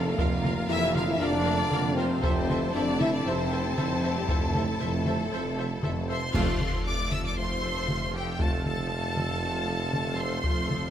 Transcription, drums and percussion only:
0.19 taiko loud
0.44 taiko mid medium
0.95 taiko mid medium
1.72 taiko mid medium
2.24 taiko loud
2.50 taiko mid medium
3.01 taiko mid medium
3.78 taiko mid medium
4.29 taiko loud
4.54 taiko mid medium
5.05 taiko mid medium
5.83 taiko mid medium
6.34 concert bass drum medium
6.34 taiko loud
6.34 crash medium
6.60 taiko mid medium
7.12 taiko mid medium
7.88 taiko mid medium
8.40 taiko loud
8.66 taiko mid soft
9.17 taiko mid soft
9.93 taiko mid medium
10.44 taiko medium
10.70 taiko mid medium

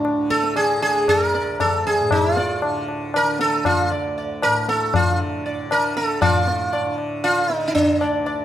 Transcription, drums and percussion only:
0.05 tabla na medium
0.30 tabla ke soft
0.44 tabla te medium
0.56 tabla na medium
0.83 tabla na medium
1.08 tabla na medium
1.08 tabla ge medium
1.34 tabla te medium
1.60 tabla na medium
1.60 tabla ge medium
1.86 tabla ge soft
2.11 tabla na medium
2.11 tabla ge medium
2.37 tabla te medium
2.62 tabla na medium
2.88 tabla na medium
3.14 tabla na medium
3.39 tabla te medium
3.65 tabla na medium
3.65 tabla ge medium
4.42 tabla na medium
4.68 tabla te medium
4.94 tabla na medium
4.94 tabla ge medium
5.71 tabla na medium
5.97 tabla te medium
6.22 tabla na loud
6.22 tabla ge medium
6.48 tabla te medium
6.73 tabla na medium
6.98 tabla na medium
7.24 tabla na medium
7.50 tabla te medium
7.75 tabla tin medium
7.75 tabla ge medium
8.01 tabla na medium
8.27 tabla na medium

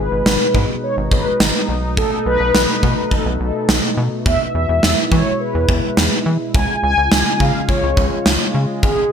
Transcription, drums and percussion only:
0.26 snare loud
0.55 kick medium
1.11 kick loud
1.40 snare loud
1.97 kick loud
2.55 snare loud
2.83 kick medium
3.11 kick medium
3.69 snare loud
4.26 kick loud
4.83 snare loud
5.12 kick medium
5.69 kick loud
5.97 snare loud
6.54 kick loud
7.12 snare loud
7.40 kick medium
7.69 kick medium
7.97 kick loud
8.26 snare loud
8.83 kick loud

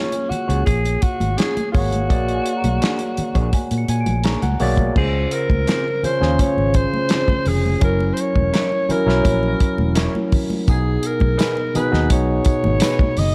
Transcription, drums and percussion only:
0.12 closed hi-hat soft
0.31 closed hi-hat soft
0.31 low conga medium
0.50 closed hi-hat soft
0.66 kick medium
0.66 closed hi-hat medium
0.66 muted conga soft
0.85 closed hi-hat medium
0.85 muted conga soft
1.02 kick medium
1.02 closed hi-hat medium
1.20 closed hi-hat soft
1.20 high conga medium
1.38 snare medium
1.38 closed hi-hat medium
1.57 closed hi-hat soft
1.57 muted conga soft
1.57 high conga medium
1.74 kick medium
1.74 open hi-hat medium
1.74 low conga medium
1.92 closed hi-hat medium
1.92 high conga medium
2.10 kick loud
2.10 closed hi-hat medium
2.10 muted conga soft
2.29 closed hi-hat soft
2.46 closed hi-hat medium
2.64 closed hi-hat soft
2.64 high conga medium
2.82 snare medium
2.82 closed hi-hat medium
2.82 muted conga soft
2.99 closed hi-hat soft
3.17 closed hi-hat medium
3.17 low conga medium
3.35 kick medium
3.35 closed hi-hat soft
3.53 kick medium
3.53 closed hi-hat medium
3.53 high conga soft
3.71 closed hi-hat medium
3.71 muted conga soft
3.88 closed hi-hat medium
4.06 closed hi-hat soft
4.06 high conga medium
4.24 snare medium
4.24 closed hi-hat medium
4.24 muted conga soft
4.42 closed hi-hat soft
4.42 muted conga soft
4.42 high conga medium
4.60 open hi-hat medium
4.60 low conga medium
4.77 kick medium
4.77 closed hi-hat medium
4.77 high conga medium
4.96 kick loud
4.96 crash medium
5.31 closed hi-hat medium
5.50 kick medium
5.50 high conga medium
5.67 snare loud
5.67 closed hi-hat medium
5.67 muted conga soft
6.04 closed hi-hat soft
6.04 low conga medium
6.22 snare soft
6.39 kick medium
6.39 closed hi-hat medium
6.39 muted conga soft
6.39 high conga medium
6.58 muted conga soft
6.74 kick medium
6.74 closed hi-hat medium
6.94 high conga medium
7.09 snare loud
7.09 closed hi-hat medium
7.09 muted conga soft
7.28 kick medium
7.28 muted conga soft
7.28 high conga medium
7.46 open hi-hat medium
7.46 low conga medium
7.66 high conga medium
7.81 kick loud
7.81 closed hi-hat medium
7.81 muted conga soft
8.00 muted conga soft
8.17 closed hi-hat medium
8.36 kick medium
8.36 high conga medium
8.54 snare medium
8.54 closed hi-hat medium
8.72 muted conga soft
8.89 closed hi-hat medium
8.89 low conga medium
9.09 snare soft
9.25 kick medium
9.25 closed hi-hat medium
9.25 muted conga soft
9.25 high conga soft
9.43 muted conga soft
9.60 kick medium
9.60 closed hi-hat medium
9.78 high conga medium
9.95 snare medium
9.95 closed hi-hat medium
9.95 muted conga soft
10.15 muted conga soft
10.15 high conga medium
10.32 kick medium
10.32 open hi-hat medium
10.32 low conga medium
10.50 high conga medium
10.67 kick loud
10.67 closed hi-hat medium
10.67 tambourine soft
10.67 muted conga soft
11.03 closed hi-hat medium
11.03 tambourine medium
11.20 kick medium
11.20 high conga medium
11.39 snare loud
11.39 closed hi-hat medium
11.39 tambourine medium
11.57 muted conga soft
11.75 closed hi-hat medium
11.75 tambourine medium
11.75 low conga medium
11.93 snare soft
12.10 kick medium
12.10 closed hi-hat loud
12.10 tambourine soft
12.10 high conga soft
12.45 kick medium
12.45 closed hi-hat medium
12.45 tambourine soft
12.64 high conga medium
12.80 snare medium
12.80 closed hi-hat loud
12.80 tambourine medium
12.99 kick medium
12.99 high conga medium
13.17 open hi-hat medium
13.17 tambourine soft
13.17 low conga medium

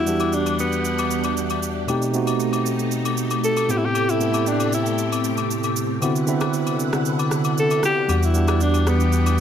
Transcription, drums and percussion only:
0.07 shaker medium
0.20 high agogo medium
0.20 shaker soft
0.33 shaker medium
0.46 high agogo medium
0.46 shaker soft
0.59 shaker medium
0.72 shaker soft
0.85 shaker medium
0.99 high agogo medium
0.99 shaker medium
1.11 shaker medium
1.24 high agogo medium
1.24 shaker soft
1.37 shaker medium
1.50 high agogo medium
1.50 shaker soft
1.63 shaker loud
1.88 high agogo medium
1.88 shaker medium
2.02 shaker medium
2.14 shaker medium
2.27 high agogo medium
2.27 shaker soft
2.40 shaker medium
2.53 high agogo medium
2.53 shaker medium
2.66 shaker medium
2.79 shaker soft
2.91 shaker medium
3.05 high agogo medium
3.05 shaker medium
3.17 shaker medium
3.30 high agogo medium
3.30 shaker medium
3.44 shaker medium
3.57 high agogo medium
3.57 shaker soft
3.69 shaker medium
3.95 high agogo medium
3.95 shaker medium
4.09 shaker medium
4.21 shaker medium
4.34 high agogo medium
4.34 shaker soft
4.46 shaker medium
4.60 high agogo medium
4.60 shaker medium
4.73 shaker medium
4.86 shaker soft
4.98 shaker medium
5.12 high agogo medium
5.12 shaker medium
5.24 shaker medium
5.37 high agogo medium
5.37 shaker soft
5.51 shaker medium
5.63 high agogo medium
5.63 shaker soft
5.76 shaker loud
6.02 high agogo medium
6.02 shaker medium
6.16 shaker medium
6.27 shaker medium
6.41 cross-stick medium
6.41 high agogo medium
6.41 shaker soft
6.53 shaker medium
6.67 high agogo medium
6.67 shaker medium
6.80 shaker medium
6.93 cross-stick medium
6.93 shaker soft
7.05 shaker medium
7.19 high agogo medium
7.19 shaker medium
7.31 cross-stick medium
7.31 shaker medium
7.44 high agogo medium
7.44 shaker medium
7.58 shaker medium
7.71 high agogo medium
7.71 shaker soft
7.83 cross-stick medium
7.83 shaker loud
8.09 high agogo medium
8.09 shaker medium
8.23 shaker medium
8.34 shaker medium
8.48 cross-stick medium
8.48 high agogo medium
8.48 shaker soft
8.61 shaker medium
8.74 high agogo medium
8.74 shaker soft
8.87 cross-stick medium
8.87 shaker medium
9.00 shaker soft
9.12 shaker medium
9.26 high agogo medium
9.26 shaker medium

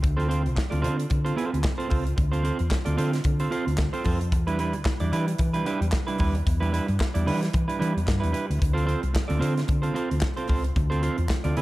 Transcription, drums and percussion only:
0.04 kick loud
0.04 closed hi-hat medium
0.20 closed hi-hat soft
0.31 closed hi-hat medium
0.46 closed hi-hat soft
0.57 kick loud
0.57 snare loud
0.57 clap medium
0.72 closed hi-hat medium
0.84 closed hi-hat medium
0.99 closed hi-hat soft
1.10 kick loud
1.10 closed hi-hat medium
1.26 closed hi-hat medium
1.38 closed hi-hat medium
1.54 closed hi-hat soft
1.64 kick loud
1.64 snare loud
1.64 clap loud
1.80 closed hi-hat medium
1.90 kick medium
1.90 open hi-hat medium
2.07 closed hi-hat medium
2.18 kick loud
2.18 closed hi-hat medium
2.33 closed hi-hat medium
2.45 closed hi-hat medium
2.59 closed hi-hat soft
2.71 kick loud
2.71 snare medium
2.71 clap medium
2.86 closed hi-hat medium
2.98 closed hi-hat medium
3.13 snare soft
3.13 closed hi-hat medium
3.24 kick loud
3.24 closed hi-hat medium
3.40 closed hi-hat medium
3.52 closed hi-hat medium
3.68 closed hi-hat soft
3.78 kick loud
3.78 snare loud
3.78 clap medium
3.94 closed hi-hat medium
4.04 kick medium
4.04 open hi-hat medium
4.21 closed hi-hat medium
4.32 kick loud
4.32 closed hi-hat medium
4.48 closed hi-hat soft
4.59 closed hi-hat medium
4.73 closed hi-hat soft
4.85 kick loud
4.85 snare loud
4.85 clap medium
5.00 closed hi-hat medium
5.13 closed hi-hat medium
5.28 closed hi-hat medium
5.38 kick loud
5.38 closed hi-hat medium
5.54 closed hi-hat medium
5.66 closed hi-hat medium
5.82 closed hi-hat soft
5.92 kick loud
5.92 snare loud
5.92 clap loud
6.08 closed hi-hat medium
6.18 kick loud
6.18 open hi-hat medium
6.35 closed hi-hat medium
6.47 kick loud
6.47 closed hi-hat medium
6.63 closed hi-hat soft
6.74 closed hi-hat medium
6.88 closed hi-hat soft
7.00 kick loud
7.00 snare medium
7.00 clap medium
7.15 closed hi-hat medium
7.28 open hi-hat medium
7.43 snare soft
7.43 closed hi-hat medium
7.53 kick loud
7.53 closed hi-hat medium
7.69 closed hi-hat medium
7.82 closed hi-hat medium
7.98 closed hi-hat soft
8.08 kick loud
8.08 snare loud
8.08 clap medium
8.24 closed hi-hat medium
8.34 closed hi-hat medium
8.51 closed hi-hat medium
8.62 kick loud
8.62 closed hi-hat medium
8.78 closed hi-hat soft
8.89 closed hi-hat medium
9.03 closed hi-hat soft
9.15 kick medium
9.15 snare loud
9.15 clap medium
9.30 closed hi-hat medium
9.42 closed hi-hat medium
9.57 snare soft
9.57 closed hi-hat soft
9.68 kick loud
9.68 closed hi-hat medium
9.83 closed hi-hat medium
9.96 closed hi-hat medium
10.11 closed hi-hat soft
10.21 kick loud
10.21 snare loud
10.21 clap medium
10.37 closed hi-hat medium
10.48 kick medium
10.48 open hi-hat medium
10.64 closed hi-hat medium
10.76 kick loud
10.76 closed hi-hat medium
10.92 closed hi-hat soft
11.03 closed hi-hat medium
11.18 closed hi-hat soft
11.29 kick medium
11.29 snare loud
11.29 clap medium
11.44 closed hi-hat medium
11.57 closed hi-hat medium

